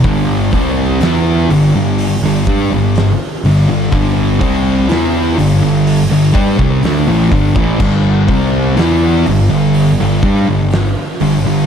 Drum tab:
CC |----------------|----------------|x---------------|
HH |o-o-o-o-o-o-o-o-|o-o-o-o-o-o-o-o-|--o-o-o-o-o-o-o-|
SD |----o-------o---|----o-------o---|----o-------o---|
BD |o-o-------o-----|o-o-------oo--oo|o-o-------o-----|